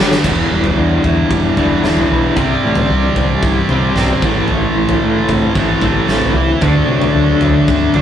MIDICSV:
0, 0, Header, 1, 6, 480
1, 0, Start_track
1, 0, Key_signature, 1, "minor"
1, 0, Tempo, 531444
1, 228, Time_signature, 4, 2, 24, 8
1, 7241, End_track
2, 0, Start_track
2, 0, Title_t, "Overdriven electric guitar"
2, 0, Program_c, 0, 29
2, 0, Note_on_c, 0, 55, 89
2, 0, Note_on_c, 0, 57, 96
2, 0, Note_on_c, 0, 62, 92
2, 0, Note_on_c, 0, 67, 106
2, 210, Note_off_c, 0, 55, 0
2, 213, Note_off_c, 0, 57, 0
2, 216, Note_off_c, 0, 62, 0
2, 217, Note_off_c, 0, 67, 0
2, 7241, End_track
3, 0, Start_track
3, 0, Title_t, "Clean electric guitar"
3, 0, Program_c, 1, 27
3, 229, Note_on_c, 1, 52, 67
3, 471, Note_on_c, 1, 55, 67
3, 703, Note_on_c, 1, 62, 69
3, 949, Note_on_c, 1, 64, 57
3, 1173, Note_off_c, 1, 55, 0
3, 1184, Note_on_c, 1, 55, 69
3, 1413, Note_off_c, 1, 62, 0
3, 1424, Note_on_c, 1, 62, 65
3, 1451, Note_off_c, 1, 52, 0
3, 1659, Note_off_c, 1, 64, 0
3, 1663, Note_on_c, 1, 64, 67
3, 1903, Note_on_c, 1, 71, 72
3, 2137, Note_on_c, 1, 48, 73
3, 2145, Note_off_c, 1, 71, 0
3, 2146, Note_off_c, 1, 55, 0
3, 2146, Note_off_c, 1, 62, 0
3, 2383, Note_on_c, 1, 52, 74
3, 2621, Note_on_c, 1, 55, 70
3, 2863, Note_on_c, 1, 60, 60
3, 3098, Note_off_c, 1, 52, 0
3, 3101, Note_on_c, 1, 52, 69
3, 3336, Note_off_c, 1, 55, 0
3, 3343, Note_off_c, 1, 48, 0
3, 3347, Note_on_c, 1, 55, 66
3, 3572, Note_off_c, 1, 60, 0
3, 3583, Note_on_c, 1, 60, 61
3, 3825, Note_off_c, 1, 60, 0
3, 3827, Note_off_c, 1, 55, 0
3, 3828, Note_on_c, 1, 45, 67
3, 4059, Note_off_c, 1, 45, 0
3, 4070, Note_on_c, 1, 45, 72
3, 4306, Note_off_c, 1, 52, 0
3, 4310, Note_on_c, 1, 52, 74
3, 4553, Note_on_c, 1, 57, 72
3, 4794, Note_on_c, 1, 60, 59
3, 4824, Note_off_c, 1, 64, 0
3, 5019, Note_off_c, 1, 52, 0
3, 5023, Note_on_c, 1, 52, 68
3, 5252, Note_off_c, 1, 57, 0
3, 5263, Note_on_c, 1, 57, 61
3, 5268, Note_off_c, 1, 45, 0
3, 5494, Note_off_c, 1, 60, 0
3, 5504, Note_on_c, 1, 60, 68
3, 5743, Note_on_c, 1, 64, 76
3, 5980, Note_off_c, 1, 52, 0
3, 5983, Note_on_c, 1, 50, 71
3, 5984, Note_off_c, 1, 57, 0
3, 5985, Note_off_c, 1, 60, 0
3, 6011, Note_off_c, 1, 64, 0
3, 6235, Note_on_c, 1, 54, 73
3, 6455, Note_off_c, 1, 54, 0
3, 6466, Note_on_c, 1, 54, 68
3, 6706, Note_on_c, 1, 57, 67
3, 6935, Note_off_c, 1, 50, 0
3, 6946, Note_on_c, 1, 50, 63
3, 7173, Note_off_c, 1, 54, 0
3, 7184, Note_on_c, 1, 54, 69
3, 7241, Note_off_c, 1, 50, 0
3, 7241, Note_off_c, 1, 54, 0
3, 7241, Note_off_c, 1, 57, 0
3, 7241, End_track
4, 0, Start_track
4, 0, Title_t, "Overdriven electric guitar"
4, 0, Program_c, 2, 29
4, 0, Note_on_c, 2, 43, 78
4, 0, Note_on_c, 2, 50, 81
4, 0, Note_on_c, 2, 55, 97
4, 201, Note_off_c, 2, 43, 0
4, 205, Note_on_c, 2, 40, 85
4, 213, Note_off_c, 2, 50, 0
4, 216, Note_off_c, 2, 55, 0
4, 227, Note_on_c, 2, 47, 86
4, 242, Note_on_c, 2, 52, 102
4, 1402, Note_off_c, 2, 40, 0
4, 1411, Note_off_c, 2, 52, 0
4, 1413, Note_off_c, 2, 47, 0
4, 1414, Note_on_c, 2, 52, 68
4, 1431, Note_on_c, 2, 47, 62
4, 1449, Note_on_c, 2, 40, 63
4, 1642, Note_off_c, 2, 40, 0
4, 1653, Note_on_c, 2, 40, 64
4, 1655, Note_off_c, 2, 47, 0
4, 1674, Note_on_c, 2, 47, 63
4, 1686, Note_off_c, 2, 52, 0
4, 1689, Note_on_c, 2, 52, 80
4, 2126, Note_off_c, 2, 40, 0
4, 2134, Note_off_c, 2, 47, 0
4, 2137, Note_on_c, 2, 48, 97
4, 2152, Note_off_c, 2, 52, 0
4, 2156, Note_on_c, 2, 55, 101
4, 2168, Note_on_c, 2, 60, 95
4, 3314, Note_off_c, 2, 60, 0
4, 3324, Note_on_c, 2, 60, 74
4, 3328, Note_off_c, 2, 48, 0
4, 3333, Note_off_c, 2, 55, 0
4, 3344, Note_on_c, 2, 55, 67
4, 3360, Note_on_c, 2, 48, 56
4, 3552, Note_off_c, 2, 48, 0
4, 3562, Note_off_c, 2, 60, 0
4, 3563, Note_on_c, 2, 48, 59
4, 3572, Note_off_c, 2, 55, 0
4, 3591, Note_on_c, 2, 55, 66
4, 3605, Note_on_c, 2, 60, 76
4, 3788, Note_off_c, 2, 48, 0
4, 3792, Note_on_c, 2, 45, 78
4, 3809, Note_off_c, 2, 55, 0
4, 3813, Note_on_c, 2, 52, 90
4, 3821, Note_off_c, 2, 60, 0
4, 3825, Note_on_c, 2, 57, 94
4, 4994, Note_off_c, 2, 45, 0
4, 5009, Note_on_c, 2, 45, 78
4, 5020, Note_off_c, 2, 52, 0
4, 5024, Note_on_c, 2, 52, 77
4, 5038, Note_off_c, 2, 57, 0
4, 5041, Note_on_c, 2, 57, 75
4, 5241, Note_off_c, 2, 57, 0
4, 5243, Note_off_c, 2, 45, 0
4, 5252, Note_on_c, 2, 57, 68
4, 5271, Note_off_c, 2, 52, 0
4, 5275, Note_on_c, 2, 52, 73
4, 5290, Note_on_c, 2, 45, 55
4, 5724, Note_off_c, 2, 57, 0
4, 5743, Note_off_c, 2, 45, 0
4, 5976, Note_on_c, 2, 50, 90
4, 5990, Note_off_c, 2, 52, 0
4, 5994, Note_on_c, 2, 57, 104
4, 6010, Note_on_c, 2, 62, 103
4, 7165, Note_off_c, 2, 50, 0
4, 7170, Note_off_c, 2, 62, 0
4, 7174, Note_off_c, 2, 57, 0
4, 7181, Note_on_c, 2, 62, 82
4, 7195, Note_on_c, 2, 57, 62
4, 7213, Note_on_c, 2, 50, 52
4, 7241, Note_off_c, 2, 50, 0
4, 7241, Note_off_c, 2, 57, 0
4, 7241, Note_off_c, 2, 62, 0
4, 7241, End_track
5, 0, Start_track
5, 0, Title_t, "Fingered electric bass"
5, 0, Program_c, 3, 33
5, 5, Note_on_c, 3, 31, 94
5, 148, Note_off_c, 3, 31, 0
5, 215, Note_on_c, 3, 28, 87
5, 378, Note_off_c, 3, 28, 0
5, 461, Note_on_c, 3, 28, 75
5, 622, Note_off_c, 3, 28, 0
5, 711, Note_on_c, 3, 40, 83
5, 869, Note_off_c, 3, 40, 0
5, 941, Note_on_c, 3, 40, 81
5, 1102, Note_off_c, 3, 40, 0
5, 1180, Note_on_c, 3, 28, 83
5, 1341, Note_off_c, 3, 28, 0
5, 1424, Note_on_c, 3, 28, 79
5, 1584, Note_off_c, 3, 28, 0
5, 1664, Note_on_c, 3, 28, 84
5, 1825, Note_off_c, 3, 28, 0
5, 1908, Note_on_c, 3, 35, 82
5, 2067, Note_off_c, 3, 35, 0
5, 2136, Note_on_c, 3, 36, 93
5, 2299, Note_off_c, 3, 36, 0
5, 2387, Note_on_c, 3, 45, 83
5, 2546, Note_off_c, 3, 45, 0
5, 2623, Note_on_c, 3, 36, 91
5, 2784, Note_off_c, 3, 36, 0
5, 2856, Note_on_c, 3, 36, 85
5, 3019, Note_off_c, 3, 36, 0
5, 3093, Note_on_c, 3, 36, 95
5, 3257, Note_off_c, 3, 36, 0
5, 3345, Note_on_c, 3, 48, 74
5, 3505, Note_off_c, 3, 48, 0
5, 3567, Note_on_c, 3, 35, 91
5, 3733, Note_off_c, 3, 35, 0
5, 3808, Note_on_c, 3, 33, 84
5, 3974, Note_off_c, 3, 33, 0
5, 4063, Note_on_c, 3, 33, 92
5, 4223, Note_off_c, 3, 33, 0
5, 4305, Note_on_c, 3, 33, 84
5, 4465, Note_off_c, 3, 33, 0
5, 4542, Note_on_c, 3, 45, 90
5, 4703, Note_off_c, 3, 45, 0
5, 4775, Note_on_c, 3, 45, 83
5, 4938, Note_off_c, 3, 45, 0
5, 5018, Note_on_c, 3, 33, 99
5, 5180, Note_off_c, 3, 33, 0
5, 5253, Note_on_c, 3, 33, 86
5, 5417, Note_off_c, 3, 33, 0
5, 5498, Note_on_c, 3, 33, 85
5, 5660, Note_off_c, 3, 33, 0
5, 5721, Note_on_c, 3, 36, 88
5, 5888, Note_off_c, 3, 36, 0
5, 5976, Note_on_c, 3, 38, 91
5, 6138, Note_off_c, 3, 38, 0
5, 6201, Note_on_c, 3, 48, 80
5, 6368, Note_off_c, 3, 48, 0
5, 6458, Note_on_c, 3, 38, 82
5, 6619, Note_off_c, 3, 38, 0
5, 6698, Note_on_c, 3, 38, 86
5, 6859, Note_off_c, 3, 38, 0
5, 6941, Note_on_c, 3, 38, 86
5, 7101, Note_off_c, 3, 38, 0
5, 7180, Note_on_c, 3, 50, 78
5, 7241, Note_off_c, 3, 50, 0
5, 7241, End_track
6, 0, Start_track
6, 0, Title_t, "Drums"
6, 102, Note_on_c, 9, 38, 99
6, 192, Note_off_c, 9, 38, 0
6, 218, Note_on_c, 9, 43, 72
6, 218, Note_on_c, 9, 49, 96
6, 221, Note_on_c, 9, 36, 100
6, 309, Note_off_c, 9, 43, 0
6, 309, Note_off_c, 9, 49, 0
6, 311, Note_off_c, 9, 36, 0
6, 576, Note_on_c, 9, 43, 85
6, 666, Note_off_c, 9, 43, 0
6, 940, Note_on_c, 9, 36, 66
6, 942, Note_on_c, 9, 43, 79
6, 1030, Note_off_c, 9, 36, 0
6, 1032, Note_off_c, 9, 43, 0
6, 1180, Note_on_c, 9, 36, 116
6, 1270, Note_off_c, 9, 36, 0
6, 1420, Note_on_c, 9, 36, 65
6, 1420, Note_on_c, 9, 43, 75
6, 1510, Note_off_c, 9, 36, 0
6, 1510, Note_off_c, 9, 43, 0
6, 1660, Note_on_c, 9, 38, 70
6, 1751, Note_off_c, 9, 38, 0
6, 1777, Note_on_c, 9, 43, 78
6, 1868, Note_off_c, 9, 43, 0
6, 2134, Note_on_c, 9, 43, 73
6, 2138, Note_on_c, 9, 36, 97
6, 2224, Note_off_c, 9, 43, 0
6, 2228, Note_off_c, 9, 36, 0
6, 2488, Note_on_c, 9, 43, 90
6, 2578, Note_off_c, 9, 43, 0
6, 2855, Note_on_c, 9, 36, 71
6, 2856, Note_on_c, 9, 43, 80
6, 2945, Note_off_c, 9, 36, 0
6, 2946, Note_off_c, 9, 43, 0
6, 3095, Note_on_c, 9, 36, 106
6, 3185, Note_off_c, 9, 36, 0
6, 3333, Note_on_c, 9, 43, 78
6, 3423, Note_off_c, 9, 43, 0
6, 3574, Note_on_c, 9, 47, 73
6, 3576, Note_on_c, 9, 38, 74
6, 3664, Note_off_c, 9, 47, 0
6, 3666, Note_off_c, 9, 38, 0
6, 3686, Note_on_c, 9, 43, 74
6, 3776, Note_off_c, 9, 43, 0
6, 3815, Note_on_c, 9, 36, 106
6, 3905, Note_off_c, 9, 36, 0
6, 4044, Note_on_c, 9, 43, 69
6, 4134, Note_off_c, 9, 43, 0
6, 4414, Note_on_c, 9, 43, 85
6, 4505, Note_off_c, 9, 43, 0
6, 4774, Note_on_c, 9, 43, 83
6, 4778, Note_on_c, 9, 36, 76
6, 4864, Note_off_c, 9, 43, 0
6, 4868, Note_off_c, 9, 36, 0
6, 5017, Note_on_c, 9, 36, 104
6, 5107, Note_off_c, 9, 36, 0
6, 5252, Note_on_c, 9, 43, 82
6, 5258, Note_on_c, 9, 36, 68
6, 5342, Note_off_c, 9, 43, 0
6, 5348, Note_off_c, 9, 36, 0
6, 5494, Note_on_c, 9, 38, 69
6, 5584, Note_off_c, 9, 38, 0
6, 5614, Note_on_c, 9, 43, 79
6, 5704, Note_off_c, 9, 43, 0
6, 5975, Note_on_c, 9, 43, 79
6, 5979, Note_on_c, 9, 36, 93
6, 6065, Note_off_c, 9, 43, 0
6, 6069, Note_off_c, 9, 36, 0
6, 6336, Note_on_c, 9, 43, 86
6, 6427, Note_off_c, 9, 43, 0
6, 6692, Note_on_c, 9, 43, 83
6, 6782, Note_off_c, 9, 43, 0
6, 6938, Note_on_c, 9, 36, 99
6, 7028, Note_off_c, 9, 36, 0
6, 7171, Note_on_c, 9, 43, 81
6, 7241, Note_off_c, 9, 43, 0
6, 7241, End_track
0, 0, End_of_file